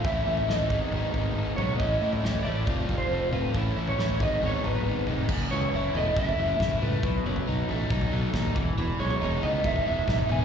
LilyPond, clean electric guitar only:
\new Staff \with { instrumentName = "Clean electric guitar" } { \time 4/4 \key a \lydian \tempo 4 = 138 e''8 e''8 dis''2 r8 cis''8 | dis''4. d''4~ d''16 c''8. b'8 | a'8. cis''8. dis''8 cis''8 b'4 r8 | r8 cis''4 dis''8 e''4. b'8~ |
b'2~ b'8 r4. | r8 cis''4 dis''8 e''8 e''4 gis''8 | }